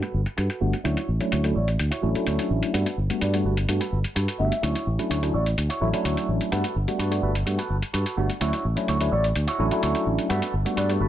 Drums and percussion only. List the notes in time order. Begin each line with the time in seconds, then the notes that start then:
0.02 closed hi-hat
0.26 closed hi-hat
0.38 closed hi-hat
0.50 closed hi-hat
0.73 closed hi-hat
0.85 closed hi-hat
0.97 closed hi-hat
1.21 closed hi-hat
1.32 closed hi-hat
1.44 closed hi-hat
1.68 closed hi-hat
1.79 closed hi-hat
1.92 closed hi-hat
2.15 closed hi-hat
2.27 closed hi-hat
2.39 closed hi-hat
2.63 closed hi-hat
2.74 closed hi-hat
2.86 closed hi-hat
3.10 closed hi-hat
3.21 closed hi-hat
3.34 closed hi-hat
3.57 closed hi-hat
3.69 closed hi-hat
3.81 closed hi-hat
4.04 closed hi-hat
4.16 closed hi-hat
4.28 closed hi-hat
4.52 closed hi-hat
4.63 closed hi-hat
4.75 closed hi-hat
4.99 closed hi-hat
5.11 closed hi-hat
5.23 closed hi-hat
5.46 closed hi-hat
5.58 closed hi-hat
5.70 closed hi-hat
5.94 closed hi-hat
6.05 closed hi-hat
6.17 closed hi-hat
6.41 closed hi-hat
6.52 closed hi-hat
6.64 closed hi-hat
6.88 closed hi-hat
6.99 closed hi-hat
7.12 closed hi-hat
7.35 closed hi-hat
7.47 closed hi-hat
7.59 closed hi-hat
7.82 closed hi-hat
7.94 closed hi-hat
8.06 closed hi-hat
8.30 closed hi-hat
8.41 closed hi-hat
8.53 closed hi-hat
8.77 closed hi-hat
8.88 closed hi-hat
9.01 closed hi-hat
9.24 closed hi-hat
9.36 closed hi-hat
9.48 closed hi-hat
9.71 closed hi-hat
9.83 closed hi-hat
9.95 closed hi-hat
10.19 closed hi-hat
10.30 closed hi-hat
10.42 closed hi-hat
10.66 closed hi-hat
10.77 closed hi-hat
10.90 closed hi-hat